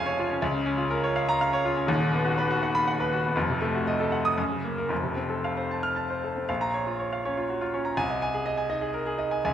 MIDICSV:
0, 0, Header, 1, 2, 480
1, 0, Start_track
1, 0, Key_signature, -5, "minor"
1, 0, Tempo, 488998
1, 408, Time_signature, 3, 2, 24, 8
1, 3297, Tempo, 519931
1, 6657, Tempo, 488998
1, 9147, End_track
2, 0, Start_track
2, 0, Title_t, "Grand piano"
2, 0, Program_c, 0, 0
2, 0, Control_c, 0, 64, 127
2, 0, Note_on_c, 0, 29, 90
2, 0, Note_on_c, 0, 41, 90
2, 0, Note_on_c, 0, 53, 68
2, 0, Note_on_c, 0, 61, 81
2, 0, Note_on_c, 0, 65, 73
2, 0, Note_on_c, 0, 68, 84
2, 0, Note_on_c, 0, 73, 83
2, 0, Note_on_c, 0, 77, 92
2, 0, Note_on_c, 0, 80, 119
2, 60, Note_off_c, 0, 73, 0
2, 60, Note_on_c, 0, 73, 89
2, 131, Note_off_c, 0, 77, 0
2, 188, Note_off_c, 0, 65, 0
2, 188, Note_on_c, 0, 65, 81
2, 246, Note_off_c, 0, 73, 0
2, 292, Note_off_c, 0, 61, 0
2, 292, Note_on_c, 0, 61, 74
2, 363, Note_off_c, 0, 29, 0
2, 369, Note_off_c, 0, 41, 0
2, 369, Note_off_c, 0, 65, 0
2, 409, Note_off_c, 0, 61, 0
2, 415, Note_on_c, 0, 37, 105
2, 425, Control_c, 0, 64, 0
2, 431, Note_off_c, 0, 80, 0
2, 433, Note_off_c, 0, 68, 0
2, 434, Note_off_c, 0, 53, 0
2, 535, Note_on_c, 0, 49, 79
2, 563, Control_c, 0, 64, 127
2, 646, Note_on_c, 0, 61, 84
2, 719, Note_off_c, 0, 49, 0
2, 766, Note_on_c, 0, 65, 81
2, 835, Note_off_c, 0, 61, 0
2, 888, Note_on_c, 0, 70, 92
2, 955, Note_off_c, 0, 65, 0
2, 1018, Note_on_c, 0, 73, 87
2, 1078, Note_off_c, 0, 70, 0
2, 1137, Note_on_c, 0, 77, 92
2, 1204, Note_off_c, 0, 73, 0
2, 1262, Note_on_c, 0, 82, 115
2, 1324, Note_off_c, 0, 77, 0
2, 1384, Note_on_c, 0, 77, 93
2, 1447, Note_off_c, 0, 82, 0
2, 1504, Note_on_c, 0, 73, 92
2, 1567, Note_off_c, 0, 77, 0
2, 1623, Note_on_c, 0, 65, 88
2, 1686, Note_off_c, 0, 73, 0
2, 1736, Note_on_c, 0, 61, 76
2, 1805, Note_off_c, 0, 65, 0
2, 1808, Note_off_c, 0, 37, 0
2, 1837, Note_on_c, 0, 27, 99
2, 1849, Note_off_c, 0, 61, 0
2, 1850, Note_on_c, 0, 39, 109
2, 1860, Control_c, 0, 64, 0
2, 1971, Note_on_c, 0, 51, 77
2, 2037, Control_c, 0, 64, 127
2, 2087, Note_on_c, 0, 59, 86
2, 2160, Note_off_c, 0, 51, 0
2, 2205, Note_on_c, 0, 66, 86
2, 2279, Note_off_c, 0, 59, 0
2, 2334, Note_on_c, 0, 71, 94
2, 2399, Note_off_c, 0, 66, 0
2, 2459, Note_on_c, 0, 66, 93
2, 2525, Note_off_c, 0, 71, 0
2, 2581, Note_on_c, 0, 78, 89
2, 2648, Note_off_c, 0, 66, 0
2, 2698, Note_on_c, 0, 83, 112
2, 2770, Note_off_c, 0, 78, 0
2, 2823, Note_on_c, 0, 78, 90
2, 2890, Note_off_c, 0, 83, 0
2, 2945, Note_on_c, 0, 71, 91
2, 3013, Note_off_c, 0, 78, 0
2, 3069, Note_on_c, 0, 66, 88
2, 3134, Note_off_c, 0, 71, 0
2, 3188, Note_on_c, 0, 59, 73
2, 3255, Note_off_c, 0, 27, 0
2, 3256, Note_off_c, 0, 66, 0
2, 3261, Note_off_c, 0, 39, 0
2, 3297, Note_on_c, 0, 29, 94
2, 3302, Note_off_c, 0, 59, 0
2, 3304, Note_on_c, 0, 41, 91
2, 3313, Control_c, 0, 64, 0
2, 3424, Note_on_c, 0, 48, 79
2, 3483, Control_c, 0, 64, 127
2, 3535, Note_on_c, 0, 57, 84
2, 3603, Note_off_c, 0, 48, 0
2, 3652, Note_on_c, 0, 66, 74
2, 3718, Note_off_c, 0, 57, 0
2, 3772, Note_on_c, 0, 75, 88
2, 3836, Note_off_c, 0, 66, 0
2, 3889, Note_on_c, 0, 69, 82
2, 3957, Note_off_c, 0, 75, 0
2, 4001, Note_on_c, 0, 78, 80
2, 4075, Note_off_c, 0, 69, 0
2, 4120, Note_on_c, 0, 87, 105
2, 4192, Note_off_c, 0, 78, 0
2, 4211, Note_off_c, 0, 29, 0
2, 4214, Note_off_c, 0, 41, 0
2, 4237, Note_on_c, 0, 42, 91
2, 4240, Note_off_c, 0, 87, 0
2, 4259, Control_c, 0, 64, 0
2, 4370, Note_on_c, 0, 49, 67
2, 4410, Control_c, 0, 64, 127
2, 4484, Note_on_c, 0, 58, 66
2, 4560, Note_off_c, 0, 49, 0
2, 4611, Note_on_c, 0, 70, 78
2, 4679, Note_off_c, 0, 58, 0
2, 4711, Note_off_c, 0, 42, 0
2, 4712, Note_on_c, 0, 29, 78
2, 4720, Note_on_c, 0, 41, 82
2, 4730, Note_off_c, 0, 70, 0
2, 4747, Control_c, 0, 64, 0
2, 4843, Note_on_c, 0, 48, 56
2, 4923, Control_c, 0, 64, 127
2, 4963, Note_on_c, 0, 60, 68
2, 5041, Note_off_c, 0, 48, 0
2, 5087, Note_on_c, 0, 69, 66
2, 5161, Note_off_c, 0, 60, 0
2, 5222, Note_on_c, 0, 77, 75
2, 5284, Note_off_c, 0, 69, 0
2, 5339, Note_on_c, 0, 72, 70
2, 5412, Note_off_c, 0, 77, 0
2, 5467, Note_on_c, 0, 81, 67
2, 5532, Note_off_c, 0, 72, 0
2, 5579, Note_on_c, 0, 89, 91
2, 5656, Note_off_c, 0, 81, 0
2, 5700, Note_on_c, 0, 81, 69
2, 5773, Note_off_c, 0, 89, 0
2, 5827, Note_on_c, 0, 72, 66
2, 5896, Note_off_c, 0, 81, 0
2, 5957, Note_on_c, 0, 69, 57
2, 6021, Note_off_c, 0, 72, 0
2, 6070, Note_on_c, 0, 60, 51
2, 6143, Note_off_c, 0, 29, 0
2, 6146, Note_off_c, 0, 69, 0
2, 6147, Note_off_c, 0, 41, 0
2, 6186, Note_on_c, 0, 77, 75
2, 6189, Note_off_c, 0, 60, 0
2, 6189, Note_on_c, 0, 34, 78
2, 6204, Control_c, 0, 64, 0
2, 6298, Note_on_c, 0, 82, 84
2, 6357, Control_c, 0, 64, 127
2, 6376, Note_off_c, 0, 77, 0
2, 6418, Note_on_c, 0, 73, 70
2, 6491, Note_off_c, 0, 82, 0
2, 6535, Note_on_c, 0, 65, 65
2, 6608, Note_off_c, 0, 73, 0
2, 6653, Note_on_c, 0, 73, 67
2, 6727, Note_off_c, 0, 65, 0
2, 6782, Note_on_c, 0, 77, 73
2, 6850, Note_off_c, 0, 73, 0
2, 6907, Note_on_c, 0, 61, 68
2, 6907, Note_on_c, 0, 73, 76
2, 6974, Note_off_c, 0, 77, 0
2, 7025, Note_on_c, 0, 65, 66
2, 7096, Note_off_c, 0, 61, 0
2, 7096, Note_off_c, 0, 73, 0
2, 7146, Note_on_c, 0, 66, 64
2, 7215, Note_off_c, 0, 65, 0
2, 7261, Note_on_c, 0, 65, 71
2, 7263, Note_off_c, 0, 66, 0
2, 7382, Note_on_c, 0, 61, 66
2, 7384, Note_on_c, 0, 73, 70
2, 7453, Note_off_c, 0, 65, 0
2, 7491, Note_on_c, 0, 82, 74
2, 7574, Note_off_c, 0, 61, 0
2, 7575, Note_off_c, 0, 73, 0
2, 7583, Note_off_c, 0, 34, 0
2, 7612, Note_on_c, 0, 80, 105
2, 7613, Note_on_c, 0, 36, 85
2, 7616, Note_off_c, 0, 82, 0
2, 7639, Control_c, 0, 64, 0
2, 7739, Note_on_c, 0, 75, 76
2, 7808, Note_off_c, 0, 80, 0
2, 7814, Control_c, 0, 64, 127
2, 7858, Note_on_c, 0, 80, 90
2, 7932, Note_off_c, 0, 75, 0
2, 7973, Note_on_c, 0, 68, 77
2, 8051, Note_off_c, 0, 80, 0
2, 8089, Note_on_c, 0, 75, 93
2, 8169, Note_off_c, 0, 68, 0
2, 8203, Note_on_c, 0, 80, 81
2, 8287, Note_off_c, 0, 75, 0
2, 8321, Note_on_c, 0, 63, 78
2, 8324, Note_on_c, 0, 75, 90
2, 8404, Note_off_c, 0, 80, 0
2, 8438, Note_on_c, 0, 68, 78
2, 8522, Note_off_c, 0, 63, 0
2, 8523, Note_off_c, 0, 75, 0
2, 8561, Note_on_c, 0, 70, 71
2, 8640, Note_off_c, 0, 68, 0
2, 8685, Note_on_c, 0, 68, 78
2, 8690, Note_off_c, 0, 70, 0
2, 8800, Note_on_c, 0, 63, 75
2, 8803, Note_on_c, 0, 75, 83
2, 8883, Note_off_c, 0, 68, 0
2, 8929, Note_on_c, 0, 80, 75
2, 9001, Note_off_c, 0, 63, 0
2, 9002, Note_off_c, 0, 75, 0
2, 9014, Note_off_c, 0, 36, 0
2, 9047, Note_off_c, 0, 80, 0
2, 9062, Note_on_c, 0, 37, 90
2, 9062, Note_on_c, 0, 80, 86
2, 9078, Control_c, 0, 64, 0
2, 9147, Note_off_c, 0, 37, 0
2, 9147, Note_off_c, 0, 80, 0
2, 9147, End_track
0, 0, End_of_file